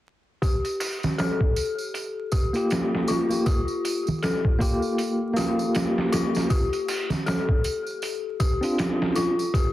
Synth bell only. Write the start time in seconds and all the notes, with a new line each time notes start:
0.42 G4
1.18 A4
2.32 G4
3.08 F4
3.46 G4
4.23 A4
5.37 G4
6.12 F4
6.50 G4
7.26 A4
8.40 G4
9.16 F4
9.54 G4